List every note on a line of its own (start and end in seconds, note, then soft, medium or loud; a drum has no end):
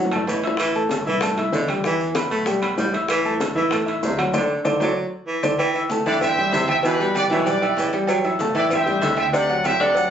0.05 low bongo medium
0.11 0.26 G1 medium
0.11 0.38 A3 medium
0.11 0.38 A4 medium
0.11 0.38 A5 medium
0.11 high conga soft
0.11 high timbale loud
0.11 claves medium
0.11 maracas soft
0.16 low bongo medium
0.27 1.00 A1 medium
0.27 0.44 E3 medium
0.27 high conga soft
0.27 low timbale medium
0.27 maracas medium
0.44 0.69 E4 medium
0.44 0.70 E5 medium
0.44 0.70 E6 medium
0.44 low bongo medium
0.44 high conga soft
0.44 high timbale medium
0.44 maracas soft
0.57 0.84 E3 medium
0.57 high bongo medium
0.57 high conga soft
0.57 high timbale loud
0.57 claves medium
0.57 maracas medium
0.75 1.01 A3 medium
0.75 1.01 A4 medium
0.75 1.01 A5 medium
0.75 high conga soft
0.75 maracas soft
0.89 high bongo medium
0.89 high conga medium
0.89 high timbale medium
0.89 low timbale medium
0.89 maracas medium
1.05 1.50 C2 medium
1.05 1.32 E3 medium
1.05 1.19 E4 medium
1.05 1.20 E5 medium
1.05 1.20 E6 medium
1.05 high bongo soft
1.05 high conga soft
1.05 maracas soft
1.21 1.35 A3 medium
1.21 1.35 A4 medium
1.21 1.35 A5 medium
1.21 high bongo medium
1.21 high conga soft
1.21 low conga medium
1.21 high timbale medium
1.21 claves medium
1.21 maracas medium
1.37 1.63 E4 medium
1.37 1.64 E5 medium
1.37 1.64 E6 medium
1.37 high conga soft
1.37 low conga medium
1.37 high timbale medium
1.37 maracas soft
1.52 2.25 E2 medium
1.52 1.70 D3 medium
1.52 high bongo soft
1.52 low bongo medium
1.52 high conga medium
1.52 low timbale medium
1.52 maracas medium
1.68 1.82 G3 medium
1.68 1.82 G4 medium
1.68 1.82 G5 medium
1.68 high bongo soft
1.68 high conga medium
1.68 high timbale medium
1.68 claves medium
1.68 maracas soft
1.84 2.10 E3 medium
1.84 2.10 E3 loud
1.84 2.10 E4 medium
1.84 2.11 E5 medium
1.84 high bongo medium
1.84 high conga soft
1.84 maracas medium
2.00 high conga soft
2.00 maracas soft
2.15 2.41 B3 medium
2.15 2.41 B4 medium
2.15 2.41 B5 medium
2.15 high bongo medium
2.15 high conga loud
2.15 high timbale medium
2.15 low timbale medium
2.15 claves medium
2.15 maracas medium
2.31 2.60 B1 loud
2.31 2.56 A3 medium
2.31 high bongo soft
2.31 high timbale medium
2.31 maracas soft
2.46 2.60 G3 medium
2.46 2.59 G4 medium
2.46 2.60 G5 medium
2.46 high bongo medium
2.46 high conga soft
2.46 maracas medium
2.62 2.77 B1 medium
2.62 2.88 B3 medium
2.62 2.88 B4 medium
2.62 2.88 B5 medium
2.62 high conga soft
2.62 high timbale medium
2.62 claves medium
2.62 maracas soft
2.78 3.51 A1 medium
2.78 2.94 G3 medium
2.78 high bongo soft
2.78 low bongo medium
2.78 high conga soft
2.78 low timbale medium
2.78 maracas medium
2.93 3.19 E4 medium
2.93 3.19 E5 medium
2.93 3.20 E6 medium
2.93 high bongo soft
2.93 high conga soft
2.93 high timbale medium
2.93 maracas soft
3.08 3.34 E3 loud
3.08 high bongo medium
3.08 high conga soft
3.08 high timbale loud
3.08 claves medium
3.08 maracas medium
3.25 3.51 A3 medium
3.25 3.51 A4 medium
3.25 3.51 A5 medium
3.25 high conga soft
3.25 maracas soft
3.40 high bongo medium
3.40 high conga medium
3.40 high timbale medium
3.40 low timbale medium
3.40 maracas medium
3.55 3.99 E2 medium
3.55 3.81 E3 medium
3.55 3.69 E4 medium
3.55 3.69 E5 medium
3.55 3.69 E6 medium
3.55 high bongo soft
3.55 high conga soft
3.55 maracas soft
3.71 3.84 A3 medium
3.71 3.84 A4 medium
3.71 3.85 A5 medium
3.71 high bongo medium
3.71 high conga soft
3.71 low conga medium
3.71 high timbale medium
3.71 claves medium
3.71 maracas medium
3.86 4.12 E4 medium
3.86 4.12 E5 medium
3.86 4.13 E6 medium
3.86 high conga soft
3.86 high timbale medium
3.86 maracas soft
4.03 4.32 D2 medium
4.03 4.20 C3 medium
4.03 high bongo soft
4.03 low bongo medium
4.03 high conga medium
4.03 low timbale medium
4.03 maracas medium
4.17 4.31 F#3 medium
4.17 4.31 F#4 medium
4.17 4.31 F#5 medium
4.17 high bongo soft
4.17 high conga medium
4.17 high timbale medium
4.17 claves medium
4.17 maracas soft
4.33 4.46 D2 loud
4.33 4.60 D3 medium
4.33 4.44 A4 medium
4.33 4.44 C5 medium
4.33 4.44 D5 medium
4.33 low bongo loud
4.33 high conga medium
4.33 high timbale loud
4.33 claves loud
4.33 maracas medium
4.65 4.77 D2 loud
4.65 4.75 A4 loud
4.65 4.75 C5 loud
4.65 4.75 D5 loud
4.65 low bongo loud
4.65 high conga medium
4.65 high timbale loud
4.65 claves loud
4.65 maracas medium
4.80 4.92 D2 loud
4.80 5.06 F#3 medium
4.80 4.91 A4 medium
4.80 4.91 C5 loud
4.80 4.91 D5 loud
4.80 low bongo loud
4.80 high conga loud
4.80 high timbale loud
4.80 claves medium
4.80 maracas loud
5.27 5.44 E3 medium
5.43 5.55 D2 medium
5.43 5.53 A4 medium
5.43 5.53 C5 medium
5.43 5.53 D5 medium
5.43 low bongo medium
5.43 high conga medium
5.43 high timbale loud
5.43 claves loud
5.43 maracas loud
5.58 5.83 E3 loud
5.58 cowbell loud
5.58 high conga soft
5.58 low agogo loud
5.58 claves medium
5.58 maracas medium
5.75 5.88 E4 medium
5.75 5.88 E5 medium
5.75 5.88 E6 medium
5.75 high conga soft
5.75 low agogo medium
5.75 maracas soft
5.90 6.03 A3 medium
5.90 6.04 A4 medium
5.90 6.04 A5 medium
5.90 cowbell medium
5.90 high conga medium
5.90 low timbale medium
5.90 maracas medium
6.06 6.49 E2 loud
6.06 6.31 D3 medium
6.06 6.32 E4 medium
6.06 6.13 B4 medium
6.06 6.13 D5 loud
6.06 6.32 E5 medium
6.06 6.32 E6 medium
6.06 cowbell medium
6.06 low agogo medium
6.06 maracas soft
6.21 6.66 C5 medium
6.21 6.65 E5 loud
6.21 cowbell loud
6.21 high conga soft
6.21 low conga loud
6.21 low agogo loud
6.21 claves medium
6.21 maracas medium
6.37 6.50 G3 medium
6.37 6.50 G4 medium
6.37 6.51 G5 medium
6.37 high conga soft
6.37 low conga medium
6.37 maracas soft
6.52 7.25 E2 medium
6.52 6.69 C3 medium
6.52 6.78 E4 medium
6.52 6.79 E5 medium
6.52 6.79 E6 medium
6.52 cowbell medium
6.52 high conga loud
6.52 low timbale medium
6.52 low agogo medium
6.52 maracas medium
6.68 6.76 C5 medium
6.68 6.76 E5 loud
6.68 cowbell medium
6.68 high conga medium
6.68 low agogo loud
6.68 claves medium
6.68 maracas soft
6.83 7.09 B2 medium
6.83 6.97 E3 medium
6.83 6.97 E4 medium
6.83 7.14 G4 medium
6.83 7.14 B4 loud
6.83 6.97 E5 medium
6.83 cowbell loud
6.83 high conga soft
6.83 maracas medium
7.00 7.25 G3 medium
7.00 7.25 G4 medium
7.00 7.26 G5 medium
7.00 high conga soft
7.00 low agogo medium
7.00 maracas soft
7.15 7.23 B4 medium
7.15 7.22 D5 loud
7.15 cowbell medium
7.15 high conga medium
7.15 low timbale medium
7.15 low agogo loud
7.15 claves medium
7.15 maracas medium
7.30 7.60 B1 loud
7.30 7.55 B2 medium
7.30 7.43 E3 loud
7.30 7.44 E4 loud
7.30 7.90 B4 medium
7.30 7.90 D5 loud
7.30 7.44 E5 medium
7.30 cowbell medium
7.30 maracas soft
7.46 7.59 G3 medium
7.46 7.59 G4 medium
7.46 7.59 G5 medium
7.46 cowbell loud
7.46 high conga soft
7.46 low agogo medium
7.46 maracas medium
7.61 7.76 B1 medium
7.61 7.88 E4 medium
7.61 7.88 E5 medium
7.61 7.88 E6 medium
7.61 high conga soft
7.61 low agogo loud
7.61 claves medium
7.61 maracas soft
7.77 8.50 A1 loud
7.77 7.94 E3 medium
7.77 cowbell medium
7.77 high conga soft
7.77 low timbale medium
7.77 maracas medium
7.93 8.19 G3 medium
7.93 8.19 G4 medium
7.93 8.19 G5 medium
7.93 cowbell medium
7.93 high conga soft
7.93 low agogo medium
7.93 maracas soft
8.07 8.33 F#3 medium
8.07 cowbell loud
8.07 high conga soft
8.07 low agogo loud
8.07 claves medium
8.07 maracas medium
8.24 8.37 E4 medium
8.24 8.37 E5 medium
8.24 8.37 E6 medium
8.24 high conga soft
8.24 low agogo medium
8.24 maracas soft
8.39 8.53 A3 medium
8.39 8.53 A4 medium
8.39 8.54 A5 medium
8.39 cowbell medium
8.39 high conga medium
8.39 low timbale medium
8.39 maracas medium
8.54 8.99 E2 loud
8.54 8.79 E3 medium
8.54 8.81 E4 medium
8.54 8.63 B4 medium
8.54 8.63 D5 medium
8.54 8.81 E5 medium
8.54 8.81 E6 medium
8.54 cowbell medium
8.54 high conga soft
8.54 low agogo medium
8.54 maracas soft
8.70 9.16 C5 medium
8.70 9.15 E5 medium
8.70 cowbell loud
8.70 high conga soft
8.70 low conga medium
8.70 low agogo loud
8.70 claves medium
8.70 maracas medium
8.86 8.99 G3 medium
8.86 8.99 G4 medium
8.86 8.99 G5 medium
8.86 high conga soft
8.86 low conga medium
8.86 maracas soft
9.02 9.75 D2 loud
9.02 9.19 D3 medium
9.02 9.28 E4 medium
9.02 9.28 E5 medium
9.02 9.28 E6 medium
9.02 cowbell medium
9.02 high conga loud
9.02 low timbale medium
9.02 low agogo medium
9.02 maracas medium
9.17 9.26 C5 medium
9.17 9.24 E5 medium
9.17 cowbell medium
9.17 high conga medium
9.17 low agogo loud
9.17 claves medium
9.17 maracas soft
9.32 9.58 C3 loud
9.32 9.46 D3 medium
9.32 9.46 D4 medium
9.32 9.46 D5 medium
9.32 9.63 D5 medium
9.32 9.62 F#5 loud
9.32 cowbell loud
9.32 high conga soft
9.32 maracas medium
9.49 9.75 F#3 medium
9.49 9.75 F#4 medium
9.49 9.75 F#5 medium
9.49 high conga soft
9.49 low agogo medium
9.49 maracas soft
9.63 9.81 C5 medium
9.63 9.80 E5 loud
9.63 cowbell medium
9.63 high conga medium
9.63 low timbale medium
9.63 low agogo loud
9.63 claves medium
9.63 maracas medium
9.79 10.09 D2 loud
9.79 10.05 C3 medium
9.79 9.93 D3 loud
9.79 9.93 D4 loud
9.79 9.93 D5 loud
9.79 10.10 D5 medium
9.79 10.10 F#5 loud
9.79 cowbell medium
9.79 maracas soft
9.95 10.08 F#3 medium
9.95 10.09 F#4 medium
9.95 10.09 F#5 medium
9.95 cowbell loud
9.95 high conga soft
9.95 low agogo medium
9.95 maracas medium